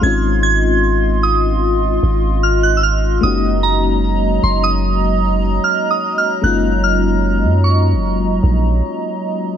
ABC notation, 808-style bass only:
X:1
M:4/4
L:1/16
Q:1/4=75
K:Gblyd
V:1 name="808-style bass" clef=bass
A,,,8- A,,,2 A,,,6 | G,,,6 G,,,6 z4 | G,,,4- G,,, G,,2- G,,/2 G,,,2- G,,,/2 B,,,2 z4 |]